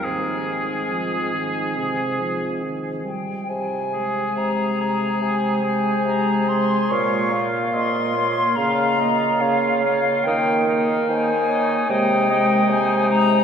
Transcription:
<<
  \new Staff \with { instrumentName = "Flute" } { \time 4/4 \key aes \major \tempo 4 = 72 aes''2.~ aes''8 g''8 | aes''4 bes''4 aes''4 bes''8 c'''8 | des'''4 c'''4 bes''4 f''8 f''8 | g''8 r8 aes''4 g''4 aes''8 bes''8 | }
  \new Staff \with { instrumentName = "Clarinet" } { \time 4/4 \key aes \major c'2.~ c'8 r8 | r2 c''2 | des''8 f''8 ees''8 des''8 f''8 ees''8 des''4 | bes'4 c''8 des''8 ees''8 ees''8 c''8 r8 | }
  \new Staff \with { instrumentName = "Oboe" } { \time 4/4 \key aes \major aes'2. r4 | r8 aes'4 aes'4 aes'4 aes'8 | f'8 f'4 f'8 f'8 f'4 f'8 | ees'8 ees'4 ees'8 ees'8 ees'4 ees'8 | }
  \new Staff \with { instrumentName = "French horn" } { \clef bass \time 4/4 \key aes \major ees4 f8 ees8 c8 f8 ees8 g8 | r8 aes4 aes4 aes4 aes8 | bes8 bes4 bes8 bes8 bes4 bes8 | bes8 bes4 bes8 aes8 aes4 aes8 | }
  \new Staff \with { instrumentName = "Bassoon" } { \clef bass \time 4/4 \key aes \major aes,2.~ aes,8 r8 | c4 c4 c4 c4 | bes,4 bes,4 des4 des4 | ees4 ees4 c4 c4 | }
>>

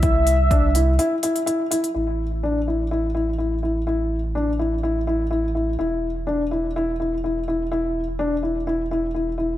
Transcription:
<<
  \new Staff \with { instrumentName = "Soft synth lead" } { \time 4/4 \key a \minor \tempo 4 = 125 e''2. r4 | r1 | r1 | r1 |
r1 | }
  \new Staff \with { instrumentName = "Upright piano" } { \time 4/4 \key a \minor e'4 d'8 e'8 e'8 e'8 e'8 e'8 | e'4 d'8 e'8 e'8 e'8 e'8 e'8 | e'4 d'8 e'8 e'8 e'8 e'8 e'8 | e'4 d'8 e'8 e'8 e'8 e'8 e'8 |
e'4 d'8 e'8 e'8 e'8 e'8 e'8 | }
  \new Staff \with { instrumentName = "Sub bass" } { \clef bass \time 4/4 \key a \minor c,2 r2 | a,,1~ | a,,1 | e,,1~ |
e,,1 | }
  \new DrumStaff \with { instrumentName = "Drums" } \drummode { \time 4/4 <hh bd>8 hh8 <hh bd>8 hh8 hh8 hh16 hh16 hh8 hh16 hh16 | r4 r4 r4 r4 | r4 r4 r4 r4 | r4 r4 r4 r4 |
r4 r4 r4 r4 | }
>>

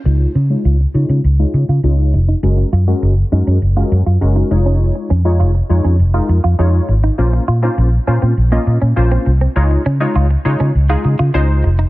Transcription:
<<
  \new Staff \with { instrumentName = "Analog polysynth" } { \time 4/4 \key des \major \tempo 4 = 101 <aes ees' f' des''>8 r16 <aes ees' f' des''>8 r16 <aes ees' f' des''>8 r16 <aes ees' f' des''>8 r16 <aes ees' f' des''>8 r8 | <aes des' ges' bes'>8 r16 <aes des' ges' bes'>8 r16 <aes des' ges' bes'>8 r16 <aes des' ges' bes'>8 r16 <aes des' ges' bes'>8 <aes ees' f' des''>8~ | <aes ees' f' des''>8 r16 <aes ees' f' des''>8 r16 <aes ees' f' des''>8 r16 <aes ees' f' bes'>8 r16 <aes ees' f' des''>8 r8 | <bes des' f' c''>8 r16 <bes des' f' c''>8 r16 <bes des' f' c''>8 r16 <bes des' f' ees''>8 r16 <bes des' f' c''>8 r8 |
<aes ees' f' des''>8 r16 <aes ees' f' des''>8 r16 <aes ees' f' des''>8 r16 <aes ees' f' aes'>8 r16 <aes ees' f' c''>8 r8 | }
  \new Staff \with { instrumentName = "Clean electric guitar" } { \time 4/4 \key des \major r8 des'16 ees'16 f'16 r8 des'16 r16 f'16 r16 f'16 des'16 r8 ees'16 | r8 f'16 ges'16 r8 ees'16 des'16 r16 f'16 r16 f'16 r16 ees'16 r16 des'16 | r8 des'16 ees'16 f'16 r8 des'16 r16 f'16 r16 f'16 des'16 r8 ees'16 | r8 f'16 ees'16 r8 des'16 c'16 r16 bes16 r16 des'16 r16 c'16 r16 c'16 |
r8 des'16 ees'16 f'16 r8 des'16 r16 f'16 r16 f'16 des'16 r8 ees'16 | }
  \new Staff \with { instrumentName = "Fingered electric bass" } { \clef bass \time 4/4 \key des \major des,8 des8 des,8 des16 des16 des,8 des16 des16 des,8 f,,8 | ges,,8 ges,8 ges,,8 ges,16 ges,16 ges,,8 ges,16 ges,16 ges,,8 f,,8~ | f,,8 f,8 f,,8 f,16 f,16 f,,8 f,16 f,16 f,8 aes,,8 | bes,,8 bes,8 bes,,8 bes,16 bes,16 bes,,8 bes,16 bes,16 bes,,8 c,8 |
des,8 des8 des,8 des16 des16 des,8 des16 des16 des,8 f,,8 | }
>>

